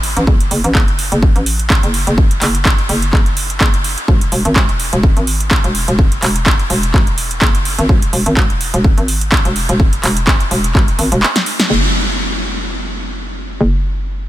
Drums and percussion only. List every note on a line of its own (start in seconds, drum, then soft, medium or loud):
0.03 open hi-hat medium
0.17 closed hi-hat medium
0.27 kick loud
0.40 closed hi-hat medium
0.51 open hi-hat loud
0.64 closed hi-hat medium
0.75 kick loud
0.75 clap loud
0.88 closed hi-hat soft
0.99 open hi-hat medium
1.12 closed hi-hat medium
1.23 kick loud
1.36 closed hi-hat soft
1.46 open hi-hat loud
1.59 closed hi-hat medium
1.70 kick loud
1.70 clap loud
1.83 closed hi-hat medium
1.94 open hi-hat medium
2.07 closed hi-hat medium
2.18 kick loud
2.31 closed hi-hat medium
2.42 clap medium
2.42 open hi-hat loud
2.55 closed hi-hat medium
2.65 kick loud
2.65 clap loud
2.79 closed hi-hat soft
2.89 open hi-hat medium
3.02 closed hi-hat medium
3.13 kick loud
3.13 clap medium
3.26 closed hi-hat soft
3.37 open hi-hat loud
3.50 closed hi-hat medium
3.61 kick loud
3.61 clap loud
3.74 closed hi-hat soft
3.84 open hi-hat medium
3.98 closed hi-hat medium
4.08 kick loud
4.21 closed hi-hat medium
4.32 open hi-hat loud
4.45 closed hi-hat medium
4.56 kick loud
4.56 clap loud
4.69 closed hi-hat soft
4.80 open hi-hat medium
4.93 closed hi-hat medium
5.03 kick loud
5.17 closed hi-hat soft
5.27 open hi-hat loud
5.40 closed hi-hat medium
5.51 kick loud
5.51 clap loud
5.64 closed hi-hat soft
5.75 open hi-hat medium
5.88 closed hi-hat medium
5.99 kick loud
6.12 closed hi-hat medium
6.22 clap medium
6.22 open hi-hat loud
6.36 closed hi-hat medium
6.46 kick loud
6.46 clap loud
6.59 closed hi-hat soft
6.70 open hi-hat medium
6.83 closed hi-hat medium
6.94 kick loud
6.94 clap medium
7.07 closed hi-hat soft
7.18 open hi-hat loud
7.31 closed hi-hat medium
7.42 kick loud
7.42 clap loud
7.55 closed hi-hat medium
7.65 open hi-hat medium
7.79 closed hi-hat medium
7.89 kick loud
8.02 closed hi-hat medium
8.13 open hi-hat loud
8.26 closed hi-hat medium
8.37 kick loud
8.37 clap loud
8.50 closed hi-hat soft
8.61 open hi-hat medium
8.74 closed hi-hat medium
8.84 kick loud
8.98 closed hi-hat soft
9.08 open hi-hat loud
9.21 closed hi-hat medium
9.32 kick loud
9.32 clap loud
9.45 closed hi-hat medium
9.56 open hi-hat medium
9.69 closed hi-hat medium
9.80 kick loud
9.93 closed hi-hat medium
10.03 clap medium
10.03 open hi-hat loud
10.17 closed hi-hat medium
10.27 kick loud
10.27 clap loud
10.40 closed hi-hat soft
10.51 open hi-hat medium
10.64 closed hi-hat medium
10.75 kick loud
10.75 clap medium
10.88 closed hi-hat soft
10.99 open hi-hat loud
11.12 closed hi-hat medium
11.23 clap loud
11.36 snare medium
11.36 closed hi-hat medium
11.46 open hi-hat medium
11.60 snare medium
11.60 closed hi-hat medium